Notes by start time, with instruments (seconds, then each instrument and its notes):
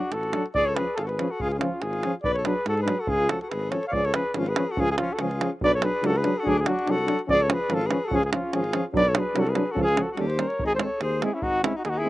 Already playing: alto saxophone D4, flugelhorn F#4
0.12 tuba A1, alto saxophone F#4, flugelhorn A4, davul high
0.23 davul high
0.33 euphonium F#3, french horn D4, davul high
0.46 davul high
0.55 tuba C#2, alto saxophone G#4, flugelhorn D5, davul low
0.66 alto saxophone A4, flugelhorn C#5
0.75 euphonium F3, french horn C#4, alto saxophone G#4, flugelhorn B4, davul high
0.95 tuba G#1, flugelhorn G#4 A4, davul high
0.99 alto saxophone F4, flugelhorn A4
1.05 alto saxophone F#4, flugelhorn B4, davul high
1.10 alto saxophone G#4
1.19 euphonium F3, french horn C#4, davul high
1.30 alto saxophone F#4, flugelhorn A4
1.40 tuba C#2, alto saxophone F4, flugelhorn G#4, davul low
1.51 alto saxophone F4, flugelhorn G#4, davul high
1.59 euphonium F3, french horn C#4, flugelhorn F4, davul high
1.64 alto saxophone C#4
1.82 tuba G#1, alto saxophone F4, flugelhorn G#4, davul high
1.93 davul high
2.03 euphonium F3, french horn C#4, davul high
2.23 tuba B1, alto saxophone B4, flugelhorn D5, davul low
2.34 alto saxophone A4, flugelhorn C#5, davul high
2.44 euphonium F#3, french horn D4, alto saxophone G#4, flugelhorn B4, davul high
2.66 tuba G#2, alto saxophone F#4, flugelhorn A4, davul high
2.77 alto saxophone G#4, davul high
2.82 euphonium F#3, french horn D4, flugelhorn B4
2.88 davul high
2.99 alto saxophone F#4, flugelhorn A4
3.07 tuba C#2, alto saxophone F4, flugelhorn G#4, davul low
3.29 euphonium F3, french horn C#4, alto saxophone F#4, flugelhorn A4, davul high
3.41 alto saxophone F#4, flugelhorn A4, davul high
3.49 tuba G#1, alto saxophone G#4, flugelhorn B4, davul high
3.71 euphonium F3, french horn C#4, alto saxophone A4, flugelhorn C#5, davul high
3.83 davul high
3.88 alto saxophone C#5, flugelhorn D5 F5
3.92 tuba C#2, euphonium F3, french horn C#4, alto saxophone G#4, davul low
4.05 alto saxophone A4, flugelhorn C#5, davul high
4.14 euphonium F3, french horn C#4, alto saxophone G#4, flugelhorn B4, davul high
4.33 tuba G#1, euphonium F3, french horn C#4, alto saxophone G#4, flugelhorn B4, davul high
4.38 alto saxophone F4
4.46 alto saxophone G#4, flugelhorn B4, davul high
4.56 euphonium F3, french horn C#4, davul high
4.70 alto saxophone F#4, flugelhorn A4
4.77 tuba C#2, euphonium F3, french horn C#4, alto saxophone F4, flugelhorn G#4, davul low
4.88 alto saxophone F4, flugelhorn G#4, davul high
4.98 euphonium F3, french horn C#4, alto saxophone C#4, flugelhorn F4, davul high
5.13 alto saxophone F#4, flugelhorn A4
5.19 tuba C#2, euphonium F3, french horn C#4, alto saxophone F4, flugelhorn G#4, davul high
5.31 davul high
5.40 euphonium F3, french horn C#4, davul high
5.61 tuba B1, euphonium F#3, french horn D4, flugelhorn D5, davul low
5.65 alto saxophone B4
5.72 alto saxophone A4, flugelhorn C#5, davul high
5.82 euphonium F#3, french horn D4, flugelhorn B4, davul high
5.86 alto saxophone G#4
6.02 tuba C#2, euphonium F#3, french horn D4, flugelhorn A4, davul high
6.06 alto saxophone F#4
6.16 alto saxophone G#4, flugelhorn B4, davul high
6.23 euphonium F#3, french horn D4, davul high
6.38 alto saxophone F#4, flugelhorn A4
6.43 tuba D2, euphonium F#3, french horn D4, flugelhorn G#4, davul low
6.49 alto saxophone D4
6.58 flugelhorn G#4, davul high
6.62 french horn D4, alto saxophone F4
6.66 euphonium F#3, flugelhorn F#4, davul high
6.71 alto saxophone D4
6.79 davul high
6.86 tuba C2, euphonium F#3, french horn D4, davul high
6.90 alto saxophone F#4, flugelhorn A4
6.98 davul high
7.06 euphonium F#3, french horn D4, davul high
7.19 davul high
7.28 tuba C#2, euphonium F3, french horn C#4, flugelhorn D5, davul low
7.33 alto saxophone G#4
7.40 alto saxophone A4, flugelhorn C#5, davul high
7.48 euphonium F3, french horn C#4, davul high
7.53 alto saxophone G#4, flugelhorn B4
7.69 tuba G#1, euphonium F3, french horn C#4, davul high
7.74 alto saxophone F4, flugelhorn A4
7.81 davul high
7.86 french horn C#4, alto saxophone G#4, flugelhorn B4
7.90 euphonium F3, davul high
8.05 alto saxophone F#4, flugelhorn A4
8.11 tuba C#2, euphonium F3, french horn C#4, flugelhorn G#4, davul low
8.16 alto saxophone F4
8.23 alto saxophone F4, flugelhorn G#4, davul high
8.33 euphonium F3, french horn C#4, alto saxophone C#4, flugelhorn F4, davul high
8.53 tuba G#1, euphonium F3, french horn C#4, alto saxophone F4, flugelhorn G#4, davul high
8.64 davul high
8.73 euphonium F3, french horn C#4, davul high
8.93 tuba B1, euphonium F#3, french horn D4, alto saxophone B4, flugelhorn D5, davul low
9.05 alto saxophone A4, davul high
9.09 flugelhorn C#5
9.14 euphonium F#3, french horn D4, alto saxophone G#4, davul high
9.19 flugelhorn B4
9.34 tuba C2, euphonium F#3, french horn D4, davul high
9.38 alto saxophone F#4, flugelhorn A4
9.47 alto saxophone G#4, flugelhorn B4, davul high
9.55 euphonium F#3, french horn D4, davul high
9.71 french horn C#4, alto saxophone F#4, flugelhorn A4
9.77 tuba C#2, euphonium F3, davul low
9.82 alto saxophone F4, flugelhorn G#4
9.88 davul high
9.95 euphonium F3, french horn C#4, davul high
10.01 alto saxophone F#4, flugelhorn A4
10.11 alto saxophone F#4
10.16 tuba D#2, euphonium G3, french horn C#4, flugelhorn A4, davul high
10.20 alto saxophone G4
10.27 flugelhorn C5, davul high
10.37 euphonium G3, french horn C#4, alto saxophone A#4, davul high
10.48 flugelhorn C#5, davul high
10.59 tuba G#1, davul low
10.64 alto saxophone D#4, flugelhorn G#4
10.74 alto saxophone A4, flugelhorn C5 C#5
10.78 euphonium G#3, french horn C4, alto saxophone G#4 A4, flugelhorn C5, davul high
10.84 flugelhorn C#5
11.00 tuba D#2, alto saxophone G#4, flugelhorn C5, davul high
11.22 euphonium G#3, french horn C4, alto saxophone E4, flugelhorn G#4, davul high
11.33 alto saxophone C#4, flugelhorn E4
11.42 tuba G#1, alto saxophone D#4, flugelhorn F#4, davul low
11.62 euphonium G#3, french horn C4, alto saxophone C#4, flugelhorn E4, davul high
11.75 alto saxophone D#4, flugelhorn F#4
11.84 tuba D#2, alto saxophone D#4, flugelhorn G#4, davul high
11.89 alto saxophone D#4, flugelhorn F#4
11.98 alto saxophone E4, flugelhorn G#4
12.05 euphonium G#3, french horn C4